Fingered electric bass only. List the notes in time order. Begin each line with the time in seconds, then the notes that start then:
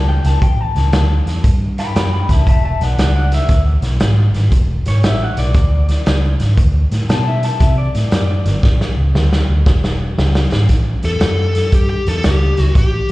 Already playing: C#2
0.24 C#2
0.42 A1
0.75 C#2
0.93 D2
1.26 E2
1.44 G2
1.95 F#2
2.29 C#2
2.47 E1
2.80 B1
2.98 C#2
3.49 D2
3.82 B1
4.01 G#1
4.34 G#1
4.52 E1
4.86 G#1
5.04 A1
5.37 B1
5.55 D2
6.07 C#2
6.40 G#1
6.58 D2
6.91 A2
7.09 B2
7.61 C3
7.95 A2
8.12 F#2
8.46 G1
8.63 A1
8.97 C#2
9.14 D2
9.49 D2
9.66 E1
10.18 C#2
10.53 G#1
10.70 A1
11.04 E2
11.22 F#2
11.73 G2
12.07 E2
12.24 C#2
12.58 C#2
12.76 A1